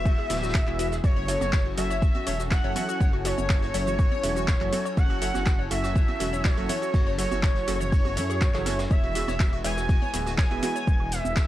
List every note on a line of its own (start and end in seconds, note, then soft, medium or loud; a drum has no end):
0.00 0.13 E1 loud
0.00 0.27 E3 medium
0.00 1.00 G#3 medium
0.00 0.27 B3 medium
0.00 1.00 B3 medium
0.00 0.27 E4 medium
0.00 1.00 E4 medium
0.00 0.27 G#4 medium
0.00 0.27 E5 loud
0.00 0.94 E5 loud
0.05 0.18 F#4 loud
0.05 kick loud
0.05 ride medium
0.05 cabasa soft
0.18 0.26 G#4 medium
0.18 ride soft
0.30 0.62 D1 medium
0.30 0.64 E3 medium
0.30 0.64 B3 medium
0.30 0.64 E4 medium
0.30 0.41 F#4 medium
0.30 0.64 G#4 medium
0.30 0.64 D5 medium
0.30 snare medium
0.30 open hi-hat loud
0.30 ride medium
0.30 cabasa medium
0.36 snare loud
0.36 ride medium
0.43 0.54 F#4 loud
0.43 snare medium
0.43 ride medium
0.43 cabasa soft
0.49 snare medium
0.49 ride medium
0.54 0.63 G#4 medium
0.54 kick loud
0.54 snare medium
0.54 clap loud
0.54 open hi-hat medium
0.54 cabasa soft
0.67 0.99 E1 loud
0.67 0.77 E3 loud
0.67 0.77 B3 medium
0.67 0.77 E4 medium
0.67 0.78 F#4 medium
0.67 0.77 G#4 medium
0.67 0.77 E5 loud
0.67 clap soft
0.79 0.90 B3 medium
0.79 0.90 E4 medium
0.79 0.91 F#4 loud
0.79 0.90 G#4 medium
0.79 0.90 E5 medium
0.79 open hi-hat loud
0.79 ride medium
0.79 cabasa medium
0.92 0.99 G#4 medium
0.92 snare medium
0.92 cabasa soft
1.04 1.36 F#1 loud
1.04 8.87 F#3 medium
1.04 8.87 C#4 medium
1.04 11.47 E4 medium
1.04 1.16 F#4 loud
1.04 8.87 A4 medium
1.04 1.68 C#5 loud
1.04 8.87 G#5 medium
1.04 kick loud
1.04 ride medium
1.04 cabasa soft
1.04 high woodblock soft
1.16 1.28 C#5 loud
1.16 ride soft
1.28 1.40 F#3 medium
1.28 1.40 C#4 medium
1.28 1.40 F#4 medium
1.28 1.40 A4 medium
1.28 1.40 E5 medium
1.28 snare medium
1.28 open hi-hat loud
1.28 ride medium
1.28 cabasa medium
1.41 1.73 F#1 medium
1.41 1.52 F#4 loud
1.41 snare medium
1.41 high conga medium
1.41 cabasa soft
1.41 high woodblock medium
1.53 1.65 C#5 loud
1.53 kick loud
1.53 snare loud
1.53 clap loud
1.53 ride loud
1.53 cabasa soft
1.66 1.76 F#4 medium
1.77 2.10 F#1 loud
1.77 2.24 F#3 medium
1.77 2.24 C#4 medium
1.77 2.24 F#4 medium
1.77 1.90 F#4 loud
1.77 2.24 A4 medium
1.77 2.24 E5 loud
1.77 2.42 E5 loud
1.77 open hi-hat loud
1.77 ride medium
1.77 cabasa medium
1.90 2.02 C#5 loud
1.90 snare medium
1.90 cabasa soft
1.90 high woodblock soft
2.02 2.14 F#4 medium
2.02 kick loud
2.02 ride medium
2.02 cabasa soft
2.15 2.26 F#4 loud
2.15 high conga medium
2.27 2.59 E1 medium
2.27 2.38 F#3 medium
2.27 2.38 C#4 medium
2.27 2.38 F#4 medium
2.27 2.38 A4 medium
2.27 2.39 C#5 loud
2.27 2.38 E5 medium
2.27 open hi-hat loud
2.27 ride medium
2.27 cabasa medium
2.27 high woodblock medium
2.39 2.50 F#4 medium
2.39 snare medium
2.39 cabasa soft
2.51 2.63 F#4 loud
2.51 3.16 F#5 loud
2.51 kick loud
2.51 snare loud
2.51 clap loud
2.51 ride medium
2.51 cabasa soft
2.64 2.73 F#1 medium
2.64 2.73 F#3 loud
2.64 2.73 C#4 medium
2.64 2.73 F#4 medium
2.64 2.73 A4 medium
2.64 2.75 C#5 loud
2.64 2.73 E5 loud
2.76 2.87 F#3 medium
2.76 2.87 C#4 medium
2.76 2.87 F#4 medium
2.76 2.87 A4 medium
2.76 2.87 E5 loud
2.76 open hi-hat loud
2.76 ride medium
2.76 high conga loud
2.76 low conga medium
2.76 cabasa medium
2.76 high woodblock soft
2.89 3.00 F#4 loud
2.89 cabasa soft
3.00 3.33 F#1 loud
3.00 3.13 C#5 loud
3.00 kick loud
3.00 ride medium
3.00 cabasa soft
3.13 3.24 F#4 medium
3.13 high woodblock medium
3.25 3.36 F#3 medium
3.25 3.36 C#4 medium
3.25 3.37 F#4 loud
3.25 3.36 F#4 medium
3.25 3.36 A4 medium
3.25 4.88 C#5 loud
3.25 3.36 E5 medium
3.25 snare soft
3.25 open hi-hat loud
3.25 ride medium
3.25 cabasa medium
3.38 3.70 F#1 loud
3.38 3.49 C#5 loud
3.38 high conga medium
3.38 cabasa soft
3.49 3.61 F#4 medium
3.49 kick loud
3.49 snare loud
3.49 clap loud
3.49 ride medium
3.49 cabasa soft
3.62 3.74 F#4 loud
3.62 snare medium
3.62 high woodblock soft
3.74 4.07 F#1 loud
3.74 4.21 F#3 medium
3.74 4.21 C#4 medium
3.74 4.21 F#4 medium
3.74 4.21 A4 medium
3.74 3.86 C#5 loud
3.74 4.21 E5 medium
3.74 snare soft
3.74 open hi-hat loud
3.74 ride medium
3.74 cabasa medium
3.87 3.97 F#4 medium
3.87 ride soft
3.87 low conga medium
3.87 cabasa soft
3.99 4.11 F#4 loud
3.99 kick loud
3.99 ride medium
3.99 cabasa soft
3.99 high woodblock medium
4.12 4.23 C#5 loud
4.12 ride soft
4.12 high conga medium
4.23 4.56 E1 medium
4.23 4.35 F#3 medium
4.23 4.35 C#4 medium
4.23 4.35 F#4 medium
4.23 4.35 A4 medium
4.23 4.35 E5 medium
4.23 open hi-hat loud
4.23 ride medium
4.23 cabasa medium
4.36 4.47 F#4 loud
4.36 cabasa soft
4.48 4.60 C#5 loud
4.48 kick loud
4.48 snare loud
4.48 clap loud
4.48 ride medium
4.48 cabasa soft
4.48 high woodblock soft
4.61 4.70 F#1 loud
4.61 4.70 F#3 medium
4.61 4.70 C#4 medium
4.61 4.70 F#4 medium
4.61 4.71 F#4 medium
4.61 4.70 A4 medium
4.61 4.70 E5 loud
4.61 clap soft
4.61 low conga medium
4.73 4.84 F#3 medium
4.73 4.84 C#4 medium
4.73 4.85 F#4 loud
4.73 4.84 F#4 medium
4.73 4.84 A4 medium
4.73 4.84 E5 loud
4.73 open hi-hat loud
4.73 ride medium
4.73 high conga loud
4.73 cabasa medium
4.85 4.97 C#5 loud
4.85 cabasa soft
4.85 high woodblock medium
4.97 5.30 F#1 loud
4.97 5.09 F#4 medium
4.97 5.62 F#5 loud
4.97 kick loud
4.97 ride medium
4.97 cabasa soft
5.10 5.21 F#4 loud
5.10 ride soft
5.22 5.33 F#3 medium
5.22 5.33 C#4 medium
5.22 5.33 F#4 medium
5.22 5.33 A4 medium
5.22 5.34 C#5 loud
5.22 5.33 E5 medium
5.22 snare soft
5.22 open hi-hat loud
5.22 ride medium
5.22 cabasa medium
5.34 5.66 F#1 loud
5.34 5.45 F#4 medium
5.34 snare medium
5.34 high conga medium
5.34 cabasa soft
5.34 high woodblock soft
5.46 5.58 F#4 loud
5.46 kick loud
5.46 snare loud
5.46 clap loud
5.46 ride medium
5.46 cabasa soft
5.59 5.70 C#5 loud
5.71 6.03 F#1 loud
5.71 6.17 F#3 medium
5.71 6.17 C#4 medium
5.71 5.82 F#4 medium
5.71 6.17 F#4 medium
5.71 6.17 A4 medium
5.71 6.45 E5 loud
5.71 6.17 E5 medium
5.71 6.46 E5 loud
5.71 open hi-hat loud
5.71 ride medium
5.71 cabasa medium
5.71 high woodblock medium
5.84 5.95 F#4 loud
5.84 snare medium
5.84 cabasa soft
5.95 6.08 C#5 loud
5.95 kick loud
5.95 ride medium
5.95 cabasa soft
6.08 6.19 F#4 medium
6.08 high conga medium
6.20 6.53 E1 medium
6.20 6.31 F#3 medium
6.20 6.31 C#4 medium
6.20 6.32 F#4 loud
6.20 6.31 F#4 medium
6.20 6.31 A4 medium
6.20 6.31 E5 medium
6.20 open hi-hat loud
6.20 ride medium
6.20 cabasa medium
6.20 high woodblock soft
6.32 6.44 C#5 loud
6.32 snare soft
6.32 cabasa soft
6.44 6.56 F#4 medium
6.44 7.09 C#5 loud
6.44 kick loud
6.44 snare loud
6.44 clap loud
6.44 ride loud
6.44 cabasa soft
6.57 6.66 F#1 loud
6.57 6.67 F#3 loud
6.57 6.67 C#4 medium
6.57 6.69 F#4 loud
6.57 6.66 F#4 medium
6.57 6.67 A4 medium
6.57 6.67 E5 loud
6.57 high woodblock medium
6.69 6.81 F#3 medium
6.69 6.81 C#4 medium
6.69 6.81 F#4 medium
6.69 6.81 A4 medium
6.69 6.81 C#5 loud
6.69 6.81 E5 loud
6.69 open hi-hat loud
6.69 ride medium
6.69 high conga medium
6.69 low conga medium
6.69 cabasa medium
6.82 6.92 F#4 medium
6.82 cabasa soft
6.94 7.26 F#1 loud
6.94 7.06 F#4 loud
6.94 kick loud
6.94 ride loud
6.94 cabasa soft
7.06 7.18 C#5 loud
7.06 high woodblock soft
7.18 7.30 F#3 medium
7.18 7.30 C#4 medium
7.18 7.30 F#4 medium
7.18 7.30 A4 medium
7.18 8.81 C#5 loud
7.18 7.30 E5 medium
7.18 snare soft
7.18 open hi-hat loud
7.18 ride medium
7.18 cabasa medium
7.31 7.63 F#1 medium
7.31 7.42 F#4 loud
7.31 high conga medium
7.31 cabasa soft
7.43 7.55 C#5 loud
7.43 kick loud
7.43 snare loud
7.43 clap loud
7.43 ride medium
7.43 cabasa soft
7.43 high woodblock medium
7.56 7.66 F#4 medium
7.56 snare soft
7.68 8.18 F#1 loud
7.68 8.14 F#3 medium
7.68 8.14 C#4 medium
7.68 7.80 F#4 loud
7.68 8.14 F#4 medium
7.68 8.14 A4 medium
7.68 8.14 E5 loud
7.68 snare soft
7.68 open hi-hat loud
7.68 ride medium
7.68 cabasa medium
7.80 7.92 C#5 loud
7.80 ride soft
7.80 low conga medium
7.80 cabasa soft
7.92 8.04 F#4 medium
7.92 kick loud
7.92 open hi-hat medium
7.92 cabasa soft
7.92 high woodblock soft
8.05 8.16 F#4 loud
8.05 high conga medium
8.17 8.49 F#2 medium
8.17 8.28 F#3 medium
8.17 8.28 C#4 medium
8.17 8.28 F#4 medium
8.17 8.28 A4 medium
8.17 8.22 C#5 loud
8.17 8.28 E5 medium
8.17 open hi-hat loud
8.17 ride medium
8.17 cabasa medium
8.30 8.37 G#4 loud
8.30 cabasa soft
8.30 high woodblock medium
8.41 8.46 F#4 medium
8.41 kick loud
8.41 snare loud
8.41 clap loud
8.41 ride medium
8.41 cabasa soft
8.54 8.86 F#1 loud
8.54 8.63 F#3 loud
8.54 8.63 C#4 medium
8.54 8.63 F#4 medium
8.54 8.62 G#4 loud
8.54 8.63 A4 medium
8.54 8.63 E5 loud
8.54 snare loud
8.54 clap soft
8.54 ride medium
8.54 low conga medium
8.66 8.77 C#4 medium
8.66 8.77 F#4 medium
8.66 8.71 F#4 loud
8.66 8.77 A4 medium
8.66 8.77 E5 loud
8.66 snare loud
8.66 open hi-hat loud
8.66 ride medium
8.66 high conga medium
8.66 cabasa medium
8.79 8.86 F#4 medium
8.79 snare loud
8.79 ride medium
8.79 cabasa soft
8.79 high woodblock soft
8.91 9.23 E1 loud
8.91 11.47 G#3 medium
8.91 11.47 B3 medium
8.91 9.03 C#5 loud
8.91 9.55 E5 loud
8.91 kick loud
8.91 ride medium
8.91 cabasa soft
8.91 high woodblock soft
9.03 9.14 F#4 medium
9.03 ride soft
9.15 9.27 E3 medium
9.15 9.27 B3 medium
9.15 9.27 E4 medium
9.15 9.27 F#4 loud
9.15 9.27 G#4 medium
9.15 9.27 E5 medium
9.15 snare medium
9.15 open hi-hat loud
9.15 ride medium
9.15 cabasa medium
9.28 9.60 E1 medium
9.28 9.39 C#5 loud
9.28 snare medium
9.28 high conga medium
9.28 cabasa soft
9.28 high woodblock medium
9.40 9.52 F#4 medium
9.40 kick loud
9.40 snare loud
9.40 clap loud
9.40 ride medium
9.40 cabasa soft
9.53 9.64 F#4 loud
9.64 9.97 E1 loud
9.64 10.11 E3 medium
9.64 10.11 B3 medium
9.64 10.11 E4 medium
9.64 10.11 G#4 medium
9.64 9.77 C#5 loud
9.64 10.11 E5 medium
9.64 10.29 G#5 loud
9.64 open hi-hat loud
9.64 ride medium
9.64 cabasa medium
9.77 9.88 F#4 medium
9.77 snare medium
9.77 cabasa soft
9.77 high woodblock soft
9.89 10.01 F#4 loud
9.89 kick loud
9.89 ride medium
9.89 cabasa soft
10.02 10.13 C#5 loud
10.02 high conga medium
10.13 10.46 D1 medium
10.13 10.25 E3 medium
10.13 10.25 B3 medium
10.13 10.25 E4 medium
10.13 10.25 F#4 medium
10.13 10.25 G#4 medium
10.13 10.25 E5 medium
10.13 open hi-hat loud
10.13 ride medium
10.13 cabasa medium
10.13 high woodblock medium
10.26 10.38 F#4 loud
10.26 snare medium
10.26 cabasa soft
10.38 10.50 C#5 loud
10.38 11.12 G#5 loud
10.38 11.13 G#5 loud
10.38 kick loud
10.38 snare loud
10.38 clap loud
10.38 ride loud
10.38 cabasa soft
10.51 10.60 E1 loud
10.51 10.60 E3 loud
10.51 10.60 B3 medium
10.51 10.60 E4 medium
10.51 10.62 F#4 medium
10.51 10.60 G#4 medium
10.51 10.60 E5 loud
10.62 10.74 E3 loud
10.62 10.74 B3 medium
10.62 10.74 E4 medium
10.62 10.75 F#4 loud
10.62 10.74 G#4 medium
10.62 10.74 E5 loud
10.62 open hi-hat loud
10.62 ride medium
10.62 high conga loud
10.62 low conga medium
10.62 cabasa medium
10.62 high woodblock soft
10.76 10.87 C#5 loud
10.76 cabasa soft
10.87 11.20 E1 loud
10.87 kick loud
10.87 ride loud
10.87 cabasa soft
11.00 high woodblock medium
11.12 11.47 E5 loud
11.12 snare soft
11.12 open hi-hat loud
11.12 ride medium
11.12 cabasa medium
11.25 11.47 E1 loud
11.25 high conga medium
11.25 cabasa soft
11.36 kick loud
11.36 snare loud
11.36 clap loud
11.36 ride medium
11.36 cabasa soft